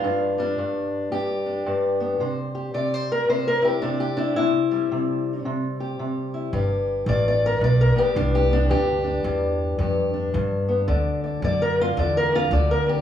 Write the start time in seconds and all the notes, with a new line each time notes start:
Already playing: G3 F4
0.04 G2 D4
0.38 G3 D4
0.58 G2
1.12 G2 G4
1.46 D4
1.66 G2
2.00 B3
2.20 C3 C5
2.55 G4
2.74 C3 D5
2.94 C5
3.12 A#4
3.28 C3 C5
3.47 A#4
3.62 E4 G4
3.82 C3 D4
4.00 G4
4.17 D4 E4
4.36 C3 E4
4.71 G3
4.91 C3
5.45 C3
5.80 G4
5.99 C3
6.34 E4
6.53 G1 G2 G4
7.06 A1 G2 D5
7.28 D5
7.46 A#4
7.61 B1 G2 D5
7.81 A#4
7.95 B3 G4, muted upright bass stroke
8.15 C2 G2 D4
8.35 G4
8.50 B3 D4
8.69 D2 G2 G4
9.04 D4
9.24 E2 G2
9.79 F2 G2 G4
10.14 D4
10.34 G2
10.69 B3
10.88 D2 D3 D5
11.24 D5
11.42 F#2 D3 D5
11.62 A#4
11.81 F4
11.97 E2 D3 D5
12.17 A#4
12.32 D4 F4
12.51 D2 D3 D5
12.71 A#4
12.87 D4 G4